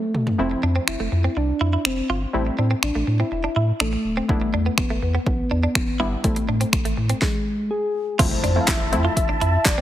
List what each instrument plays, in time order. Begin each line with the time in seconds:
Already playing: soft synth lead A3
0.15 mid tom
0.27 floor tom
0.38 sub bass F1, synth pluck F3 A3 C4 E4, soft synth lead C4
0.51 muted clean electric guitar stroke
0.63 sub bass F2, clean electric guitar D4
0.76 clean electric guitar C4
0.88 sub bass F1, soft synth lead E4, finger snap
1.00 sub bass F1, clean electric guitar A3
1.12 sub bass F2, muted clean electric guitar stroke
1.24 clean electric guitar C4
1.36 sub bass C2, soft synth lead D4, muted clean electric guitar stroke
1.61 sub bass F2, clean electric guitar E4
1.73 clean electric guitar E4
1.85 sub bass F1, soft synth lead C4, finger snap
2.09 sub bass G1, clean electric guitar F4
2.33 sub bass A1, synth pluck G3 A3 C4 E4, soft synth lead C4
2.47 muted clean electric guitar stroke
2.58 sub bass A2, soft synth lead C4, clean electric guitar D4
2.71 clean electric guitar C4
2.83 sub bass A1, soft synth lead D4, finger snap
2.95 sub bass A1, clean electric guitar A3
3.07 sub bass A2, muted clean electric guitar stroke
3.20 clean electric guitar C4, soft synth lead E4
3.32 sub bass E1, soft synth lead E4, muted clean electric guitar stroke
3.44 clean electric guitar D4
3.56 sub bass A2, clean electric guitar E4
3.80 sub bass A1, soft synth lead A3, clean electric guitar D4, finger snap
3.93 muted clean electric guitar stroke
4.05 sub bass D1
4.17 clean electric guitar C4
4.29 sub bass E1, synth pluck G3 B3 D4 E4, soft synth lead A3, kick
4.42 muted clean electric guitar stroke
4.53 sub bass E2, clean electric guitar D4
4.66 clean electric guitar B3
4.78 sub bass E1, soft synth lead B3, finger snap, kick
4.90 sub bass E1, clean electric guitar A3
5.02 sub bass E2, soft synth lead B3, muted clean electric guitar stroke
5.15 clean electric guitar B3
5.26 sub bass B1, soft synth lead B3, muted clean electric guitar stroke, kick
5.51 sub bass E2, clean electric guitar D4
5.63 clean electric guitar D4
5.75 sub bass E1, finger snap, kick
6.00 sub bass G1, synth pluck G3 B3 D4 E4, clean electric guitar E4
6.24 sub bass A1, synth pluck G3 A3 C4 E4, soft synth lead A3, kick, closed hi-hat
6.36 muted clean electric guitar stroke, closed hi-hat
6.48 sub bass A2, clean electric guitar D4
6.61 clean electric guitar C4, closed hi-hat
6.73 sub bass A1, finger snap, kick, closed hi-hat
6.85 sub bass A1, clean electric guitar A3, closed hi-hat
6.97 sub bass A2, muted clean electric guitar stroke
7.09 clean electric guitar C4, closed hi-hat
7.22 soft synth lead G#3, kick, snare
7.71 soft synth lead G#4
8.19 sub bass F1, synth pluck F3 A3 C4 E4, flute section E4 E5 A5, clean electric guitar F4, soft synth lead C5, kick, closed hi-hat, crash, impact
8.31 muted clean electric guitar stroke
8.44 sub bass F2, clean electric guitar D4, closed hi-hat
8.56 synth pluck F3 A3 C4 E4
8.61 soft synth lead F5
8.68 sub bass F1, clean electric guitar E4, soft synth lead E5, kick, snare, clap, closed hi-hat
8.80 muted clean electric guitar stroke
8.92 sub bass F2, synth pluck F3 A3 C4 E4, closed hi-hat
9.05 clean electric guitar F4
9.17 sub bass F1, soft synth lead E5, muted clean electric guitar stroke, kick, closed hi-hat
9.29 clean electric guitar D4
9.41 sub bass F2, clean electric guitar E4, soft synth lead E5, closed hi-hat
9.65 sub bass F1, soft synth lead D5, kick, snare, clap, closed hi-hat
9.78 clean electric guitar C4